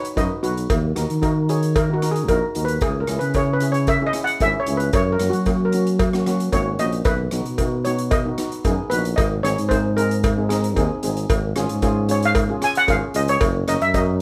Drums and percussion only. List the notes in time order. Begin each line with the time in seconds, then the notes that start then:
0.05 closed hi-hat
0.17 kick, closed hi-hat, cowbell
0.44 closed hi-hat
0.57 closed hi-hat
0.70 kick, closed hi-hat, cowbell
0.96 cross-stick, closed hi-hat
1.10 closed hi-hat
1.23 kick, closed hi-hat, cowbell
1.49 closed hi-hat
1.63 closed hi-hat
1.76 kick, closed hi-hat, cowbell
2.02 cross-stick, closed hi-hat
2.16 closed hi-hat
2.28 kick, closed hi-hat, cowbell
2.55 closed hi-hat
2.68 closed hi-hat
2.81 kick, closed hi-hat, cowbell
3.07 cross-stick, closed hi-hat
3.21 closed hi-hat
3.34 kick, closed hi-hat, cowbell
3.60 closed hi-hat
3.74 closed hi-hat
3.87 kick, closed hi-hat, cowbell
4.13 cross-stick, closed hi-hat
4.27 closed hi-hat
4.40 kick, closed hi-hat, cowbell
4.66 closed hi-hat
4.80 closed hi-hat
4.93 kick, closed hi-hat, cowbell
5.19 cross-stick, closed hi-hat
5.33 closed hi-hat
5.46 kick, closed hi-hat, cowbell
5.72 closed hi-hat
5.87 closed hi-hat
5.99 kick, closed hi-hat, cowbell
6.13 cross-stick
6.26 cross-stick, closed hi-hat
6.40 closed hi-hat
6.52 kick, closed hi-hat, cowbell
6.79 closed hi-hat
6.92 closed hi-hat
7.05 kick, closed hi-hat, cowbell
7.31 cross-stick, closed hi-hat
7.45 closed hi-hat
7.58 kick, closed hi-hat, cowbell
7.85 closed hi-hat
7.98 closed hi-hat
8.11 kick, closed hi-hat, cowbell
8.38 cross-stick, closed hi-hat
8.52 closed hi-hat
8.65 kick, closed hi-hat, cowbell
8.91 closed hi-hat
9.05 closed hi-hat
9.18 kick, closed hi-hat, cowbell
9.45 cross-stick, closed hi-hat
9.58 closed hi-hat
9.71 kick, closed hi-hat, cowbell
9.98 closed hi-hat
10.11 closed hi-hat
10.23 kick, closed hi-hat, cowbell
10.50 cross-stick, closed hi-hat
10.64 closed hi-hat
10.76 kick, closed hi-hat, cowbell
11.03 closed hi-hat
11.17 closed hi-hat
11.30 kick, closed hi-hat, cowbell
11.56 cross-stick, closed hi-hat
11.69 closed hi-hat
11.82 kick, closed hi-hat, cowbell
12.09 closed hi-hat
12.22 closed hi-hat
12.35 kick, closed hi-hat, cowbell
12.62 cross-stick, closed hi-hat
12.75 closed hi-hat
12.88 kick, closed hi-hat, cowbell
13.14 closed hi-hat
13.28 closed hi-hat
13.41 kick, closed hi-hat, cowbell
13.68 cross-stick, closed hi-hat
13.81 closed hi-hat
13.94 kick, closed hi-hat, cowbell